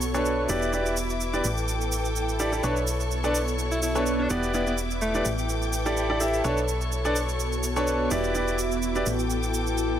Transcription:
Already playing: B1 B3 F#4 A4 C#5 C#6
0.02 shaker
0.14 D4 A4 B4 C#5, shaker
0.25 shaker
0.49 E1 E4 G4 B4 D5 E5 D6, shaker
0.62 B4, shaker
0.73 E4 G4 B4 D5, shaker
0.86 shaker
0.97 shaker
1.10 shaker
1.21 shaker
1.33 E4 G4 B4 D5, shaker
1.44 A1 A4 G5, shaker
1.57 shaker
1.68 shaker
1.81 shaker
1.88 E5, shaker
1.98 B5
2.05 shaker
2.16 shaker
2.29 shaker
2.40 E4 G4 A4 D5, shaker
2.52 E4 G4 A4, shaker
2.63 B1 B3 D4 A4 B4 C#5 C#6, shaker
2.76 shaker
2.87 shaker
3.00 shaker
3.11 F#4, shaker
3.24 D4 A4 B4 D5, shaker
3.35 shaker
3.48 shaker
3.59 shaker
3.72 E4, shaker
3.83 E4, shaker
3.95 D4 A4 B4 C#5, shaker
4.06 shaker
4.19 D4
4.30 E1 B3 E4 G4 B4 D5 E5 D6, shaker
4.38 B4
4.43 shaker
4.54 B3 E4 G4 B4 D5, shaker
4.67 B3, shaker
4.78 shaker
4.91 shaker
5.02 A3, shaker
5.14 E4 G4 B4 D5, shaker
5.25 A1 A4 G5, shaker
5.38 shaker
5.49 E5, shaker
5.62 shaker
5.73 shaker
5.80 B5
5.86 E4 G4 A4 D5, shaker
5.97 shaker
6.10 E4 G4 A4 D5
6.21 E4 G4 A4 E5, shaker
6.34 shaker
6.44 B1 B3 D4 A4 B4 C#5 C#6, shaker
6.57 shaker
6.62 F#4
6.68 shaker
6.81 shaker
6.92 shaker
7.05 D4 A4 B4 D5, shaker
7.16 shaker
7.29 shaker
7.40 shaker
7.53 shaker
7.63 shaker
7.76 D4 A4 B4 C#5, shaker
7.87 shaker
8.11 E1 E4 G4 B4 D5 E5 D6, shaker
8.24 shaker
8.35 E4 G4 B4 D5, shaker
8.48 shaker
8.59 shaker
8.72 shaker
8.83 shaker
8.95 E4 G4 B4 D5, shaker
9.06 A1 A4 G5 D6, shaker
9.19 shaker
9.30 shaker
9.43 shaker
9.54 E5, shaker
9.59 B5
9.67 shaker
9.78 shaker

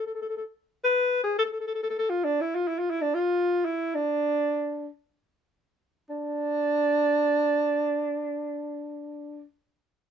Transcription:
0.06 A4
0.15 A4
0.22 A4
0.29 A4
0.37 A4
0.84 B4
1.24 G#4
1.39 A4
1.45 A4
1.53 A4
1.60 A4
1.67 A4
1.75 A4
1.83 A4
1.90 A4
1.98 A4
2.10 F4
2.24 D4
2.41 E4
2.55 F4
2.68 E4
2.79 F4
2.91 E4
3.02 D4
3.15 F4
3.65 E4
3.95 D4
6.10 D4

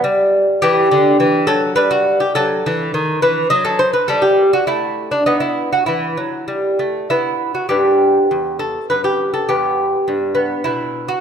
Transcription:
0.04 G3
0.62 E3 G4
0.91 D3
1.20 E3
1.47 F#3 A4
1.76 G3 B4
1.91 F#4
2.20 G4
2.35 F#3 A4
2.66 E3
2.94 D#3
3.22 E3 B4
3.50 F#3 D#5
3.65 A4
3.79 C5
3.93 B4
4.08 G3 A4
4.22 G4
4.53 F#4
4.67 A3 E4
5.11 D4
5.26 B3 D#4
5.40 E4
5.73 F#4
5.86 E3 E4
6.17 F#3
6.48 G3
6.79 A3
7.10 B3 E4
7.55 F#4
7.69 G2 B3 G4
8.31 E2
8.59 A4
8.90 F#2 B4
9.04 G4
9.34 A4
9.49 E2 B3 G4
10.08 G2
10.35 B3
10.64 B2 E4
11.08 F#4

